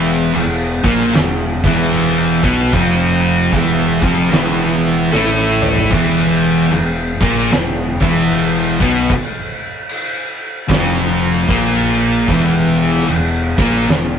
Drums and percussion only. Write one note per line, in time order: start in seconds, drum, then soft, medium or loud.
0.35 crash medium
0.84 kick loud
1.13 snare loud
1.13 crash medium
1.64 kick loud
1.93 crash medium
2.43 kick loud
2.73 kick loud
2.73 crash medium
3.52 kick loud
3.52 crash medium
4.02 kick loud
4.31 snare loud
4.31 crash medium
5.14 snare medium
5.62 mid tom medium
5.75 floor tom medium
5.90 kick loud
5.90 crash loud
6.71 crash medium
7.21 kick loud
7.50 snare loud
7.50 crash medium
8.01 kick loud
8.31 crash medium
8.80 kick loud
9.10 kick loud
9.10 crash medium
9.89 crash medium
10.69 kick loud
10.69 snare loud
10.69 crash medium
11.49 kick loud
11.49 crash medium
12.28 kick loud
12.28 crash medium
12.96 snare soft
13.08 crash medium
13.58 kick loud
13.88 snare loud
13.88 crash medium